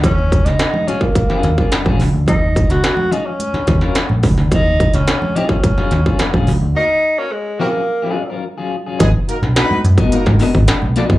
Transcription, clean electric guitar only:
X:1
M:4/4
L:1/16
Q:1/4=107
K:Ebm
V:1 name="Clean electric guitar"
z6 [G,DFA] z2 [G,DFA] z [G,DFA] [G,DFB] [G,DFA] z2 | z6 [G,DFA] z4 [G,DFB] z4 | z6 [G,DFA] z2 [G,DFA] z [G,DFA] [G,DFB] [G,DFA] z2 | z6 [G,DFA] z2 [G,DFA] z [G,DFB] z [G,DFA] z [G,DFA] |
z6 z [CGBe] z2 [CGBe] z3 [CGBe] z |]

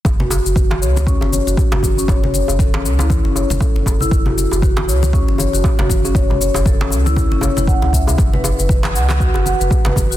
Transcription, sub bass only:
X:1
M:4/4
L:1/16
Q:"Swing 16ths" 1/4=118
K:F#m
V:1 name="Sub bass" clef=bass
F,,,3 F,,,3 C,,3 F,,,2 F,,, z F,,,3 | F,,,3 F,,,3 C,,3 F,,,2 F,,, z F,,,3 | F,,,3 F,,,3 C,,3 F,,,2 F,,, z F,,,3 | F,,,3 F,,,3 C,,3 F,,,2 F,,,2 C,,3 |
F,,,3 F,,,3 C,,3 F,,,2 F,,, z F,,,3 |]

